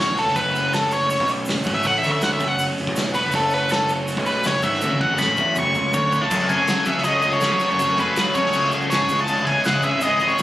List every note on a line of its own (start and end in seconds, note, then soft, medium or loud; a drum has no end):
0.00 0.24 E1 medium
0.00 0.24 E2 loud
0.00 0.17 F#3 medium
0.00 0.16 A3 medium
0.00 0.16 C#4 loud
0.00 0.15 F#4 medium
0.00 0.17 C#5 medium
0.15 0.34 F#3 medium
0.15 0.34 A3 medium
0.15 0.36 C#4 medium
0.15 0.36 F#4 medium
0.15 0.36 A4 medium
0.15 open hi-hat medium
0.25 0.35 F#1 medium
0.25 0.33 F#2 medium
0.25 snare soft
0.34 1.16 F#1 medium
0.34 1.18 F#2 medium
0.34 1.66 F#3 medium
0.34 1.65 A3 medium
0.34 1.65 C#4 medium
0.34 1.64 F#4 medium
0.34 0.72 B4 medium
0.34 kick loud
0.34 open hi-hat medium
0.34 shaker medium
0.55 open hi-hat medium
0.55 shaker medium
0.73 0.92 A4 medium
0.73 snare loud
0.73 open hi-hat medium
0.73 shaker medium
0.91 1.10 C#5 medium
0.91 open hi-hat medium
0.91 shaker medium
1.10 1.29 C#5 loud
1.10 open hi-hat medium
1.10 shaker medium
1.19 1.46 B1 loud
1.19 1.47 B2 medium
1.19 kick medium
1.28 open hi-hat medium
1.28 shaker medium
1.45 1.57 F#1 medium
1.45 1.55 F#2 medium
1.45 snare loud
1.45 open hi-hat medium
1.45 shaker medium
1.56 1.66 F#1 medium
1.56 1.65 F#2 medium
1.64 1.84 G#1 medium
1.64 1.84 G#2 loud
1.64 1.82 F#3 medium
1.64 1.83 A3 medium
1.64 1.84 C#4 medium
1.64 1.85 F#4 medium
1.64 kick loud
1.64 open hi-hat medium
1.64 shaker medium
1.74 1.86 E5 medium
1.83 2.02 A1 medium
1.83 2.02 A2 loud
1.83 3.15 F#3 medium
1.83 3.14 A3 loud
1.83 3.13 C#4 loud
1.83 3.12 F#4 medium
1.83 1.98 F#5 medium
1.83 kick loud
1.83 open hi-hat medium
1.83 shaker medium
1.98 2.10 E5 medium
2.03 2.38 D2 loud
2.03 2.40 D3 loud
2.03 snare soft
2.03 open hi-hat medium
2.03 shaker medium
2.12 2.23 E5 medium
2.21 2.33 F#5 medium
2.21 snare loud
2.21 open hi-hat medium
2.21 shaker medium
2.33 2.48 E5 medium
2.40 2.50 F#1 medium
2.40 2.48 F#2 loud
2.40 kick loud
2.40 open hi-hat medium
2.40 shaker medium
2.48 2.68 F#1 medium
2.48 2.65 F#2 medium
2.48 2.65 F#5 medium
2.59 open hi-hat medium
2.59 shaker loud
2.77 2.87 F#1 medium
2.77 2.86 F#2 medium
2.77 open hi-hat medium
2.86 3.22 E1 medium
2.86 3.23 E2 loud
2.86 kick loud
2.96 snare loud
2.96 open hi-hat medium
2.96 shaker loud
3.12 3.31 F#3 medium
3.12 3.32 A3 medium
3.12 3.33 C#4 medium
3.12 3.33 F#4 medium
3.12 3.33 B4 medium
3.12 open hi-hat medium
3.12 shaker medium
3.25 3.33 F#1 medium
3.25 3.32 F#2 medium
3.32 4.13 F#1 medium
3.32 4.17 F#2 loud
3.32 4.64 F#3 medium
3.32 4.63 A3 medium
3.32 4.62 C#4 medium
3.32 4.62 F#4 medium
3.32 3.54 A4 medium
3.32 kick loud
3.32 open hi-hat medium
3.32 shaker medium
3.50 3.71 B4 medium
3.50 open hi-hat medium
3.50 shaker medium
3.69 3.89 A4 medium
3.69 snare loud
3.69 open hi-hat medium
3.69 shaker loud
3.89 open hi-hat medium
3.89 shaker medium
4.07 open hi-hat medium
4.07 shaker medium
4.16 4.43 B1 loud
4.16 4.44 B2 loud
4.16 kick loud
4.26 4.47 B4 medium
4.26 open hi-hat medium
4.26 shaker medium
4.43 4.54 F#1 loud
4.43 4.52 F#2 loud
4.43 4.64 C#5 medium
4.43 snare loud
4.43 open hi-hat medium
4.43 shaker loud
4.53 4.63 F#1 medium
4.53 4.62 F#2 medium
4.62 4.81 G#1 loud
4.62 4.81 G#2 loud
4.62 4.80 F#3 medium
4.62 4.81 A3 medium
4.62 4.82 C#4 medium
4.62 4.82 F#4 medium
4.62 4.99 E5 medium
4.62 kick loud
4.62 open hi-hat medium
4.62 shaker medium
4.74 snare soft
4.80 4.91 D2 medium
4.80 4.90 D3 loud
4.80 6.10 F#3 loud
4.80 6.11 A3 loud
4.80 6.10 C#4 loud
4.80 6.09 F#4 loud
4.80 high tom medium
4.80 shaker medium
4.90 5.00 C#2 loud
4.90 4.99 C#3 loud
5.00 5.10 E2 medium
5.00 5.09 E3 loud
5.00 5.19 F#5 medium
5.00 kick medium
5.10 5.19 F#1 medium
5.10 5.19 F#2 loud
5.18 5.37 A1 medium
5.18 5.35 A2 loud
5.18 5.55 B5 medium
5.18 snare medium
5.18 shaker medium
5.36 5.56 E2 loud
5.36 5.55 E3 loud
5.36 kick loud
5.36 shaker medium
5.56 5.74 F#1 loud
5.56 5.74 F#2 loud
5.56 6.30 C#6 medium
5.56 kick medium
5.56 shaker loud
5.74 5.93 C#2 medium
5.74 5.93 C#3 loud
5.74 kick medium
5.74 shaker medium
5.93 6.20 D2 medium
5.93 6.20 D3 loud
5.93 6.23 C#5 medium
5.93 kick medium
5.93 shaker loud
6.11 6.29 F#3 medium
6.11 6.29 A3 medium
6.11 6.29 C#4 medium
6.11 6.29 F#4 medium
6.11 floor tom medium
6.11 shaker medium
6.21 6.31 C#2 medium
6.21 6.28 C#3 loud
6.21 6.49 A5 loud
6.30 6.48 F#2 medium
6.30 6.40 F#2 loud
6.30 6.47 C#3 loud
6.30 6.49 F#3 medium
6.30 10.42 G#3 medium
6.30 6.49 A3 loud
6.30 9.07 A3 medium
6.30 6.49 C#4 loud
6.30 9.06 F#4 medium
6.30 6.49 F#4 loud
6.30 6.51 G#4 loud
6.30 9.06 C#5 medium
6.30 kick loud
6.30 crash loud
6.30 crash medium
6.30 shaker loud
6.42 6.58 F#2 medium
6.48 6.67 F#2 medium
6.48 6.67 C#3 medium
6.48 6.68 F#3 medium
6.48 6.68 A3 medium
6.48 6.68 C#4 medium
6.48 6.68 F#4 medium
6.48 6.69 G#4 loud
6.48 6.88 G#5 loud
6.48 kick medium
6.48 crash medium
6.48 shaker medium
6.67 6.85 F#2 loud
6.67 6.85 C#3 medium
6.67 6.86 F#3 loud
6.67 6.94 F#3 medium
6.67 6.86 A3 loud
6.67 6.87 C#4 loud
6.67 6.87 F#4 medium
6.67 6.88 G#4 medium
6.67 snare loud
6.67 crash medium
6.67 shaker loud
6.85 7.03 F#2 medium
6.85 7.03 C#3 medium
6.85 7.04 F#3 medium
6.85 7.04 A3 medium
6.85 7.05 C#4 medium
6.85 7.05 F#4 medium
6.85 7.05 G#4 loud
6.85 7.04 E5 medium
6.85 kick medium
6.85 crash medium
6.85 shaker medium
6.97 7.22 C#2 medium
6.97 snare soft
7.04 7.22 F#2 medium
7.04 7.23 C#3 medium
7.04 7.23 F#3 medium
7.04 7.23 A3 loud
7.04 7.24 C#4 loud
7.04 7.24 F#4 loud
7.04 7.25 G#4 loud
7.04 7.33 D#5 loud
7.04 crash medium
7.04 shaker loud
7.22 7.49 C#2 medium
7.22 7.40 F#2 medium
7.22 7.40 C#3 medium
7.22 7.41 F#3 medium
7.22 7.41 A3 medium
7.22 7.42 C#4 medium
7.22 7.42 F#4 medium
7.22 7.43 G#4 medium
7.22 crash medium
7.22 shaker medium
7.32 7.52 C#5 medium
7.32 shaker soft
7.41 7.59 F#2 medium
7.41 7.59 C#3 medium
7.41 7.60 F#3 loud
7.41 7.60 A3 loud
7.41 7.62 C#4 loud
7.41 7.61 F#4 loud
7.41 7.62 G#4 loud
7.41 snare loud
7.41 crash medium
7.41 shaker loud
7.52 7.68 F#3 medium
7.52 7.70 C#5 medium
7.60 7.77 F#2 medium
7.60 7.78 C#3 medium
7.60 7.78 F#3 medium
7.60 7.78 A3 loud
7.60 7.80 C#4 medium
7.60 7.79 F#4 medium
7.60 7.81 G#4 loud
7.60 crash medium
7.60 shaker medium
7.71 7.87 F#2 medium
7.71 7.99 C#5 loud
7.71 shaker soft
7.79 7.96 F#2 loud
7.79 7.96 C#3 loud
7.79 7.96 F#3 loud
7.79 7.96 A3 loud
7.79 7.98 C#4 loud
7.79 7.97 F#4 loud
7.79 7.99 G#4 medium
7.79 kick loud
7.79 crash medium
7.79 shaker medium
7.89 8.05 F#2 medium
7.97 8.15 F#2 medium
7.97 8.15 C#3 medium
7.97 8.16 F#3 medium
7.97 8.16 A3 medium
7.97 8.17 C#4 medium
7.97 8.16 F#4 medium
7.97 8.18 G#4 loud
7.97 8.37 B4 medium
7.97 kick medium
7.97 crash medium
7.97 shaker medium
8.16 8.33 F#2 loud
8.16 8.33 C#3 loud
8.16 8.42 F#3 medium
8.16 8.34 F#3 loud
8.16 8.34 A3 loud
8.16 8.35 C#4 loud
8.16 8.34 F#4 loud
8.16 8.38 G#4 loud
8.16 snare loud
8.16 crash medium
8.16 shaker medium
8.34 8.51 F#2 medium
8.34 8.52 C#3 medium
8.34 8.53 F#3 medium
8.34 8.52 A3 medium
8.34 8.54 C#4 medium
8.34 8.53 F#4 medium
8.34 8.69 C#5 medium
8.34 kick medium
8.34 crash medium
8.34 shaker medium
8.38 8.55 G#4 medium
8.45 8.69 C#2 medium
8.45 snare soft
8.53 8.70 F#2 medium
8.53 8.70 C#3 medium
8.53 8.71 F#3 medium
8.53 8.71 A3 medium
8.53 8.72 C#4 loud
8.53 8.72 F#4 loud
8.53 8.74 G#4 loud
8.53 crash medium
8.53 shaker medium
8.71 8.98 C#2 medium
8.71 8.89 F#2 medium
8.71 8.89 C#3 medium
8.71 8.90 F#3 medium
8.71 8.90 A3 medium
8.71 8.91 C#4 medium
8.71 8.91 F#4 medium
8.71 8.94 G#4 loud
8.71 crash medium
8.71 shaker medium
8.82 shaker soft
8.90 9.08 F#2 medium
8.90 9.08 C#3 loud
8.90 9.09 F#3 loud
8.90 9.09 A3 loud
8.90 9.10 C#4 loud
8.90 9.09 F#4 loud
8.90 9.19 C#5 medium
8.90 snare loud
8.90 crash medium
8.90 shaker loud
8.94 9.11 G#4 loud
9.01 9.09 G#2 medium
9.09 9.35 C#2 loud
9.09 9.28 C#3 loud
9.09 9.29 E3 loud
9.09 9.29 G#3 loud
9.09 10.42 B3 medium
9.09 9.29 B3 loud
9.09 9.29 C#4 loud
9.09 10.42 E4 medium
9.09 9.30 E4 loud
9.09 9.28 G#4 loud
9.09 10.42 C#5 loud
9.09 kick loud
9.09 crash medium
9.09 shaker medium
9.19 9.45 A5 loud
9.19 shaker soft
9.28 9.46 C#3 medium
9.28 9.46 E3 loud
9.28 9.47 G#3 loud
9.28 9.47 B3 loud
9.28 9.47 C#4 loud
9.28 9.48 E4 loud
9.28 9.48 G#4 loud
9.28 crash medium
9.28 shaker loud
9.37 9.55 C#2 loud
9.37 shaker soft
9.46 9.65 C#3 medium
9.46 9.65 E3 medium
9.46 9.65 G#3 medium
9.46 9.66 B3 medium
9.46 9.65 C#4 medium
9.46 9.66 E4 medium
9.46 9.67 G#4 loud
9.46 9.65 G#5 loud
9.46 kick medium
9.46 crash medium
9.64 9.84 C#3 loud
9.64 9.91 C#3 loud
9.64 9.84 E3 loud
9.64 9.85 G#3 loud
9.64 9.85 B3 medium
9.64 9.85 C#4 loud
9.64 9.86 E4 loud
9.64 9.86 G#4 loud
9.64 9.84 F#5 loud
9.64 snare loud
9.64 crash medium
9.64 shaker loud
9.82 10.01 C#3 medium
9.82 10.01 E3 medium
9.82 10.02 G#3 medium
9.82 10.03 B3 medium
9.82 10.03 C#4 medium
9.82 10.02 E4 medium
9.82 10.04 G#4 loud
9.82 10.02 E5 loud
9.82 kick medium
9.82 crash medium
9.82 shaker medium
9.94 10.19 G#1 medium
10.01 10.19 C#3 medium
10.01 10.20 E3 medium
10.01 10.20 G#3 loud
10.01 10.20 B3 medium
10.01 10.21 C#4 medium
10.01 10.21 E4 loud
10.01 10.21 G#4 loud
10.01 10.28 D#5 loud
10.01 crash medium
10.01 shaker loud
10.20 10.42 G#1 medium
10.20 10.38 C#3 medium
10.20 10.39 E3 medium
10.20 10.40 G#3 medium
10.20 10.39 B3 loud
10.20 10.41 C#4 medium
10.20 10.40 E4 medium
10.20 10.40 G#4 loud
10.20 crash medium
10.20 shaker medium
10.28 10.42 C#5 medium
10.28 shaker soft
10.38 10.42 C#3 medium
10.38 crash medium
10.38 shaker loud